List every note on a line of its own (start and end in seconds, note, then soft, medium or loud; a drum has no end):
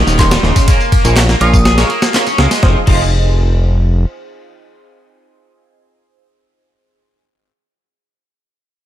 0.00 0.30 D#3 medium
0.07 0.38 D#1 medium
0.07 snare soft
0.07 tambourine medium
0.19 0.25 D#4 medium
0.19 0.25 G4 medium
0.19 0.25 A#4 medium
0.19 0.25 C#5 medium
0.19 0.68 C6 medium
0.19 kick medium
0.19 clap loud
0.19 ride medium
0.19 tambourine medium
0.31 0.42 G3 medium
0.31 snare loud
0.31 ride medium
0.31 tambourine soft
0.43 0.52 D#1 medium
0.43 0.54 C#3 loud
0.43 0.50 D#4 medium
0.43 0.50 G4 medium
0.43 0.50 A#4 medium
0.43 0.50 D#5 medium
0.43 snare soft
0.56 0.67 C#3 medium
0.56 kick medium
0.56 ride medium
0.56 tambourine medium
0.68 1.04 A#3 medium
0.68 0.74 F4 medium
0.68 0.74 G#4 medium
0.68 0.74 A#4 medium
0.68 0.74 C#5 medium
0.68 kick loud
0.68 ride medium
0.68 tambourine medium
0.80 tambourine soft
0.92 kick loud
0.92 ride medium
1.05 1.36 A#1 medium
1.05 1.14 A#3 loud
1.05 1.11 F4 medium
1.05 1.11 G#4 medium
1.05 1.11 A#4 medium
1.05 1.11 C#5 medium
1.05 ride soft
1.05 tambourine medium
1.16 snare loud
1.16 clap loud
1.16 ride medium
1.16 tambourine medium
1.29 1.35 A#3 medium
1.29 snare soft
1.29 tambourine soft
1.41 1.84 A#1 medium
1.41 1.47 F4 loud
1.41 1.53 F4 loud
1.41 1.47 G#4 medium
1.41 1.47 A#4 medium
1.41 1.47 C#5 loud
1.41 1.90 D#6 loud
1.41 ride medium
1.54 kick loud
1.54 tambourine medium
1.65 1.77 G#4 medium
1.65 snare loud
1.65 tambourine medium
1.78 1.89 G#3 loud
1.78 1.88 F4 loud
1.78 1.88 G#4 medium
1.78 1.88 A#4 medium
1.78 1.88 C#5 loud
1.78 snare soft
1.78 ride medium
1.78 tambourine soft
1.90 2.25 A#3 medium
1.90 ride soft
2.02 snare loud
2.02 tambourine medium
2.14 2.21 F4 medium
2.14 2.21 G#4 medium
2.14 2.21 A#4 medium
2.14 2.21 C#5 medium
2.14 snare soft
2.14 clap loud
2.14 ride medium
2.14 tambourine medium
2.27 2.37 C#4 medium
2.27 ride soft
2.27 tambourine soft
2.38 2.48 C#2 medium
2.38 2.49 G#3 loud
2.38 2.45 F4 medium
2.38 2.45 G#4 medium
2.38 2.45 A#4 medium
2.38 2.45 D#5 medium
2.38 snare loud
2.51 2.62 G#3 medium
2.51 snare soft
2.51 ride medium
2.51 tambourine medium
2.63 2.77 F1 medium
2.63 2.77 F3 loud
2.63 2.77 C4 medium
2.63 2.77 D#4 medium
2.63 2.77 F4 medium
2.63 2.77 G#4 loud
2.63 kick loud
2.63 snare medium
2.87 4.05 F1 loud
2.87 3.01 F3 medium
2.87 7.66 C4 medium
2.87 7.66 D#4 medium
2.87 7.66 F4 medium
2.87 7.66 G#4 loud
2.87 kick loud
2.87 crash medium